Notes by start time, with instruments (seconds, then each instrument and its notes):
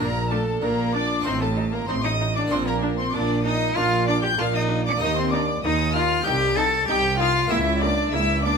Already playing: harpsichord A#3 D4 F4
0.00 double bass section A#1, harpsichord A#2, cello section A#2, violin section A#4 A#5
0.30 cello A3, viola section D4, violin section A4 A5
0.62 double bass section A#1, harpsichord A#2, cello section A#2, cello A#3, viola section D4, violin section A#4 A#5
0.93 viola section D4, cello D4, violin section D5 D6
1.20 harpsichord C4 D#4 F4
1.25 double bass section A1, harpsichord A2, cello section A2, cello C4, viola section D#4, violin section C5 C6
1.41 cello A3, violin section A4 A5
1.57 viola section D#4
1.72 cello A#3, violin section A#4 A#5
1.88 double bass section A1, cello section A2, harpsichord A2, cello C4, viola section D#4, violin section C5 C6
2.04 cello D#4, violin section D#5 D#6
2.20 viola section D#4
2.35 cello D4, violin section D5 D6
2.46 harpsichord A#3 D4 F4
2.51 double bass section A#1, harpsichord A#2, cello section A#2, cello C4, viola section D4, violin section C5 C6
2.67 cello A#3, violin section A#4 A#5
2.82 viola section D4
2.97 cello C4, violin section C5 C6
3.12 double bass section A#1, harpsichord A#2, cello section A#2, viola section D4, cello D4, violin section D5 D6
3.43 viola section D4, cello D#4, violin section D#5 D#6
3.75 double bass section A#1, cello section A#2, harpsichord A#2, viola section D4, cello F4, violin section F5 F6
4.07 cello D4, viola section D4, violin section D5 D6
4.22 cello G4, violin section G5 G6
4.38 double bass section A#1, cello section A#2, harpsichord A#2, viola section D4, cello F4, violin section F5 F6
4.54 cello D#4, violin section D#5 D#6
4.69 viola section D4
4.85 cello D4, violin section D5 D6
4.97 harpsichord A#3 D#4 G4, viola section D#4, violin section D#6
5.01 cello section D#2, double bass section D#2, harpsichord D#2, cello D#4, violin section D#5
5.16 cello C4, violin section C5 C6
5.32 cello D4, viola section D#4, violin section D5 D6
5.63 double bass section D#2, cello section D#2, harpsichord D#2, viola section D#4, cello D#4, violin section D#5 D#6
5.94 viola section D#4, cello F4, violin section F5 F6
6.22 double bass section C2, harpsichord C4 D#4 G4, violin section G6
6.26 cello section C2, harpsichord C2, viola section D#4, cello G4, violin section G5
6.57 viola section D#4, cello A4, violin section A5 A6
6.87 cello section C2, double bass section C2, harpsichord C2, viola section D#4, cello G4, violin section G5 G6
7.18 viola section D#4, cello F4, violin section F5 F6
7.46 harpsichord A#3 E4 G4, violin section E6
7.50 double bass section C#2, harpsichord C#2, cello section C#2, viola section A#3, cello E4, violin section E5
7.81 viola section A#3, cello D4, violin section D5 D6
8.12 cello section C#2, double bass section C#2, harpsichord C#2, viola section A#3, cello E4, violin section E5 E6
8.43 viola section A#3, cello D4, violin section D5 D6